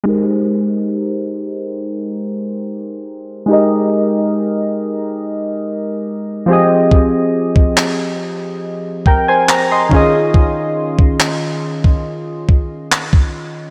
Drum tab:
CP |----------------|----------------|----x-------x---|----x-------x---|
BD |----------------|----------------|o--o------o---o-|o--o---o--o--o--|